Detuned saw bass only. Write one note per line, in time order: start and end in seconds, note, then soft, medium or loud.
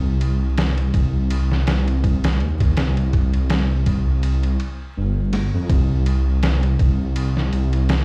0.00 0.91 C2 medium
0.94 1.64 C2 loud
1.68 2.42 C2 loud
2.41 2.73 D#2 loud
2.77 3.84 C2 loud
3.87 4.57 C2 loud
4.97 5.50 G1 medium
5.54 5.68 F2 loud
5.70 6.76 C2 loud
6.80 7.50 C2 loud
7.53 8.05 C2 loud